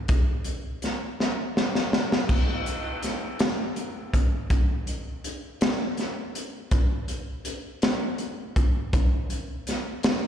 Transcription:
0.08 kick, closed hi-hat
0.45 closed hi-hat
0.82 snare, closed hi-hat
1.20 snare
1.57 snare
1.75 snare
1.93 snare
2.12 snare
2.29 kick, crash
2.66 closed hi-hat
3.02 snare, closed hi-hat
3.39 snare, closed hi-hat
3.76 closed hi-hat
4.14 kick, closed hi-hat
4.50 kick, closed hi-hat
4.87 closed hi-hat
5.24 closed hi-hat
5.61 snare, closed hi-hat
5.97 snare, closed hi-hat
6.35 closed hi-hat
6.71 kick, closed hi-hat
7.08 closed hi-hat
7.45 closed hi-hat
7.82 snare, closed hi-hat
8.18 closed hi-hat
8.56 kick, closed hi-hat
8.93 kick, closed hi-hat
9.30 closed hi-hat
9.67 snare, closed hi-hat
10.03 snare, closed hi-hat

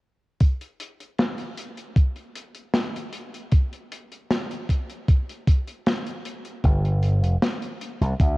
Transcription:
0.40 kick, closed hi-hat
0.61 closed hi-hat
0.80 closed hi-hat
1.00 closed hi-hat
1.19 snare, closed hi-hat
1.38 closed hi-hat
1.58 closed hi-hat
1.78 closed hi-hat
1.96 kick, closed hi-hat
2.16 closed hi-hat
2.36 closed hi-hat
2.55 closed hi-hat
2.74 snare, closed hi-hat
2.96 closed hi-hat
3.13 closed hi-hat
3.34 closed hi-hat
3.52 kick, closed hi-hat
3.73 closed hi-hat
3.92 closed hi-hat
4.12 closed hi-hat
4.31 snare, closed hi-hat
4.51 closed hi-hat
4.69 kick, closed hi-hat
4.90 closed hi-hat
5.08 kick, closed hi-hat
5.29 closed hi-hat
5.47 kick, closed hi-hat
5.67 closed hi-hat
5.86 snare, closed hi-hat
6.06 closed hi-hat
6.25 closed hi-hat
6.45 closed hi-hat
6.64 G1, kick, closed hi-hat
6.85 closed hi-hat
7.03 closed hi-hat
7.23 F1, closed hi-hat
7.42 snare, closed hi-hat
7.62 closed hi-hat
7.81 closed hi-hat
8.01 C2, closed hi-hat
8.20 D2, kick, closed hi-hat

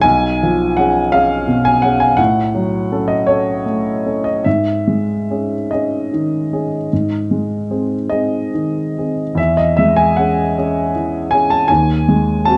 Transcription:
0.01 B1 G#5
0.43 F3
0.77 C#4 G#4 F#5
1.12 C#4 G#4 F5
1.48 B2
1.65 G#5
1.82 C#4 G#4 F#5
2.00 G#5
2.17 A2 F#5
2.55 F#3
2.92 C#4 A4
3.08 D#5
3.27 C#4 A4 C#5
3.66 A3
4.06 C#4 A4
4.24 D#5
4.44 G#2 E5
4.87 G#3
5.31 C#4 G#4
5.71 C#4 G#4 D#5
6.13 D#3
6.53 C#4 G#4
6.93 G#2
7.31 G#3
7.71 C4 G#4
8.09 C4 G#4 D#5
8.54 D#3
8.98 C4 G#4
9.35 E2 E5
9.57 D#5
9.77 G#3 E5
9.96 G#5
10.17 C#4 G#4 F#5
10.58 C#4 G#4
10.96 E3
11.31 C#4 G#4 G#5
11.50 A5
11.68 D#2 G#5
12.09 G#3
12.45 C4 F#4 A5

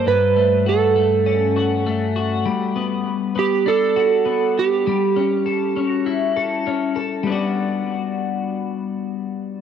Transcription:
Already playing: A#3 D4 A4
0.06 G2 B4
0.36 A3
0.66 F#4 A4
0.96 A3
1.26 C#4
1.56 F#4
1.86 A3
2.16 F#4
2.46 G3
2.76 B3
3.36 B3 G4
3.66 D4 A4
3.96 F#4
4.26 B3
4.59 G4
4.87 G3
5.16 C#4
5.46 A4
5.76 C#4
5.88 F#4
6.06 E4
6.36 A4
6.67 C#4
6.96 A4
7.23 G3 B3
7.30 D4 F#4

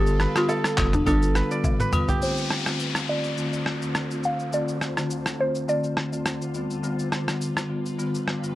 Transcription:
Already playing: G1 D4 G4 A4 B4 D5 F5
0.06 shaker
0.20 B4, cross-stick, shaker
0.35 D3 G3 B3 F4, cross-stick, high agogo, shaker
0.49 A4, low woodblock, shaker
0.64 cross-stick, shaker
0.77 F1 D3 G3 B3 F4, kick, clap, high agogo, shaker
0.93 D4, mid tom, shaker
1.06 G1 D3 G3 B3 D4 F4 A4, kick, high agogo, shaker
1.22 shaker
1.35 B4, cross-stick, shaker
1.51 D3 G3 B3 F4 D5, shaker
1.64 kick, high tom, low woodblock, shaker
1.80 B4, mid tom, shaker
1.92 D3 G3 B3 F4, mid tom, high agogo, shaker
2.08 G4, floor tom, shaker
2.21 D2 D3 A3 C4 F4 C5, downlifter, shaker
2.37 shaker
2.50 cross-stick, shaker
2.66 D3 A3 C4 F4, cross-stick, shaker
2.79 shaker
2.95 cross-stick, shaker
3.08 D3 A3 C4 F4 D5
3.24 shaker
3.37 D3 A3 C4 F4, shaker
3.53 shaker
3.66 cross-stick
3.81 D3 A3 C4 F4, shaker
3.95 cross-stick, shaker
4.10 D3 A3 C4 F4, shaker
4.23 F5, shaker
4.39 shaker
4.52 D3 A3 C4 F4 D5, shaker
4.68 shaker
4.81 cross-stick, shaker
4.97 D3 A3 C4 F4, cross-stick, shaker
5.10 shaker
5.26 cross-stick, shaker
5.39 D3 A3 C4 F4 C5
5.55 shaker
5.68 D3 A3 C4 F4 D5, shaker
5.84 shaker
5.97 cross-stick
6.12 D3 A3 C4 F4, shaker
6.26 cross-stick, shaker
6.42 shaker
6.54 G2 D3 G3 B3 F4 B4, shaker
6.70 shaker
6.83 D3 G3 B3 F4, shaker
6.99 shaker
7.12 cross-stick, shaker
7.28 D3 G3 B3 F4, cross-stick, shaker
7.41 shaker
7.57 cross-stick, shaker
7.70 D3 G3 B3 F4
7.86 shaker
7.98 D3 G3 B3 F4, shaker
8.14 shaker
8.28 cross-stick
8.43 D3 G3 B3 F4, shaker

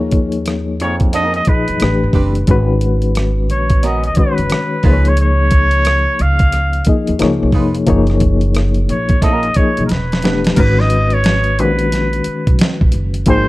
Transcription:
Already playing: D#2 F3 A#3 D#4 G#4 C#5
0.11 kick, closed hi-hat
0.32 closed hi-hat
0.46 cross-stick, closed hi-hat
0.80 F2 C#5, closed hi-hat
1.00 kick, closed hi-hat
1.13 F3 C#4 D#4 A#4 D#5, cross-stick, closed hi-hat
1.24 F#3
1.34 D#5, closed hi-hat
1.45 A#2 F3 D#4 B4, muted upright bass stroke, kick, closed hi-hat
1.49 G#4 D#5
1.68 F#2, closed hi-hat
1.80 A1 E3 A3 D4 G4, cross-stick, closed hi-hat
1.84 B4
2.04 G1
2.13 F#1 C4 D4 G4 B4, kick, open hi-hat
2.35 closed hi-hat
2.47 G#1 D#3 G#3 C#4 F#4 B4, kick, closed hi-hat
2.81 closed hi-hat
3.02 closed hi-hat
3.15 cross-stick, closed hi-hat
3.50 A#1 C#5, closed hi-hat
3.70 kick, closed hi-hat
3.83 B3 C#4 F#4 A#4 D#5, cross-stick, closed hi-hat
4.04 D#5, closed hi-hat
4.15 D#3 G#3 C#4 F#4 B4, kick, closed hi-hat
4.20 B4
4.26 C#5
4.38 F#1, closed hi-hat
4.50 cross-stick, closed hi-hat
4.83 C#2 F3 G#3 A#3 C#4 D#4 F4 G#4 B4 C5, kick, open hi-hat
4.87 B4
4.93 C#5
5.05 C#5, closed hi-hat
5.17 closed hi-hat
5.21 C#5
5.51 kick, closed hi-hat
5.71 closed hi-hat
5.85 cross-stick, closed hi-hat
6.19 C#2 F5, closed hi-hat
6.39 kick, closed hi-hat
6.52 cross-stick, closed hi-hat
6.73 closed hi-hat
6.85 F3 A#3 D#4 G#4, kick, closed hi-hat
6.89 D#5
7.07 D#2, closed hi-hat
7.19 C#2 F3 A#3 D#4 G#4 C#5, cross-stick, closed hi-hat
7.43 B1
7.52 F1 G#3 D#4 F4 B4, kick, open hi-hat
7.75 closed hi-hat
7.87 F#1 F3 A#3 D#4 G#4 C#5, kick, closed hi-hat
8.07 cross-stick, closed hi-hat
8.20 kick, closed hi-hat
8.41 closed hi-hat
8.55 cross-stick, closed hi-hat
8.74 closed hi-hat
8.89 A#1 C#5, closed hi-hat
9.09 kick, closed hi-hat
9.22 A#3 C#4 F4 A#4 D#5, kick, cross-stick, closed hi-hat
9.43 closed hi-hat
9.54 F3 A#3 D#4 G#4 C#5, muted upright bass stroke, kick, closed hi-hat
9.59 D#5
9.77 B1, closed hi-hat
9.86 A#4, closed hi-hat
9.91 E1 B4, snare
10.12 snare, closed hi-hat
10.22 E3 A3 B3 D4 G4 B4, snare, closed hi-hat
10.44 snare, closed hi-hat
10.56 G#1 D#3 G#3 C#4 F#4 A#4 B4, kick, closed hi-hat, crash
10.80 D#5, snare
10.90 closed hi-hat
11.10 C#5, closed hi-hat
11.24 snare, closed hi-hat
11.44 closed hi-hat
11.59 A#1 D#3 G#3 C#4 F#4 B4, closed hi-hat
11.79 closed hi-hat
11.92 snare, closed hi-hat
12.13 closed hi-hat
12.24 muted upright bass stroke, closed hi-hat
12.47 B1, kick, closed hi-hat
12.59 snare, closed hi-hat
12.81 A#1, kick
12.92 F#1, closed hi-hat
13.14 closed hi-hat
13.26 G#1 F3 A#3 D#4 G#4 C5, kick, closed hi-hat

